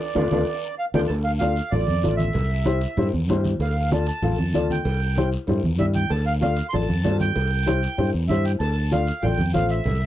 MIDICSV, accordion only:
0, 0, Header, 1, 2, 480
1, 0, Start_track
1, 0, Key_signature, -1, "minor"
1, 0, Tempo, 312989
1, 1681, Time_signature, 4, 2, 24, 8
1, 15428, End_track
2, 0, Start_track
2, 0, Title_t, "Accordion"
2, 0, Program_c, 0, 21
2, 0, Note_on_c, 0, 74, 75
2, 1150, Note_off_c, 0, 74, 0
2, 1204, Note_on_c, 0, 77, 93
2, 1311, Note_off_c, 0, 77, 0
2, 1451, Note_on_c, 0, 79, 85
2, 1557, Note_off_c, 0, 79, 0
2, 1645, Note_on_c, 0, 81, 90
2, 1761, Note_off_c, 0, 81, 0
2, 1901, Note_on_c, 0, 77, 80
2, 2014, Note_off_c, 0, 77, 0
2, 2129, Note_on_c, 0, 77, 84
2, 2623, Note_on_c, 0, 74, 86
2, 2640, Note_off_c, 0, 77, 0
2, 3301, Note_off_c, 0, 74, 0
2, 3323, Note_on_c, 0, 76, 80
2, 4721, Note_off_c, 0, 76, 0
2, 5544, Note_on_c, 0, 77, 82
2, 5979, Note_off_c, 0, 77, 0
2, 6032, Note_on_c, 0, 81, 99
2, 6234, Note_off_c, 0, 81, 0
2, 6257, Note_on_c, 0, 81, 98
2, 7234, Note_on_c, 0, 79, 79
2, 7238, Note_off_c, 0, 81, 0
2, 8116, Note_off_c, 0, 79, 0
2, 8882, Note_on_c, 0, 76, 84
2, 8990, Note_off_c, 0, 76, 0
2, 9128, Note_on_c, 0, 79, 82
2, 9355, Note_on_c, 0, 81, 90
2, 9372, Note_off_c, 0, 79, 0
2, 9581, Note_off_c, 0, 81, 0
2, 9602, Note_on_c, 0, 77, 83
2, 9710, Note_off_c, 0, 77, 0
2, 9846, Note_on_c, 0, 77, 85
2, 10228, Note_off_c, 0, 77, 0
2, 10259, Note_on_c, 0, 84, 72
2, 10331, Note_on_c, 0, 81, 97
2, 10344, Note_off_c, 0, 84, 0
2, 10997, Note_off_c, 0, 81, 0
2, 11054, Note_on_c, 0, 79, 95
2, 12427, Note_off_c, 0, 79, 0
2, 12706, Note_on_c, 0, 76, 84
2, 12957, Note_on_c, 0, 79, 81
2, 12961, Note_off_c, 0, 76, 0
2, 13066, Note_off_c, 0, 79, 0
2, 13180, Note_on_c, 0, 81, 94
2, 13686, Note_off_c, 0, 81, 0
2, 13689, Note_on_c, 0, 77, 81
2, 14146, Note_on_c, 0, 79, 82
2, 14180, Note_off_c, 0, 77, 0
2, 14600, Note_off_c, 0, 79, 0
2, 14625, Note_on_c, 0, 77, 91
2, 14881, Note_off_c, 0, 77, 0
2, 14886, Note_on_c, 0, 76, 78
2, 15428, Note_off_c, 0, 76, 0
2, 15428, End_track
0, 0, End_of_file